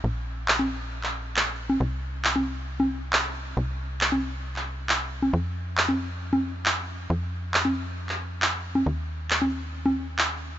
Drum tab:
CP |----x----x--x---|----x-------x---|----x----x--x---|----x-------x---|
CG |-----o---------o|-----o---o------|-----o---------o|-----o---o------|

CP |----x----x--x---|----x-------x---|
CG |-----o---------o|-----o---o------|